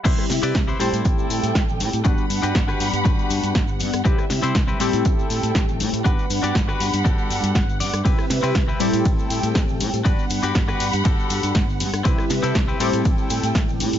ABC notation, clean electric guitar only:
X:1
M:4/4
L:1/16
Q:1/4=120
K:G
V:1 name="Clean electric guitar"
[EGBc]2 z [EGBd] z [EGBc] [EGAc]6 z4 | [DFGB]2 z [DFGB] z [DFGB] z2 [DFGB]4 z4 | [CEGB]2 z [CEGc] z [CEGB] [CEGA]6 z4 | [DFGB]2 z [DFGd] z [DFGB] z2 [DFGA]4 f2 d2 |
[CEGB]2 z [CEGB] z [CEGB] [CEGA]6 z4 | [DFGB]2 z [DFGB] z [DFGB] z2 [DFGA]4 z4 | [CEGB]2 z [CEGA] z [CEGB] [CEGA]6 z4 |]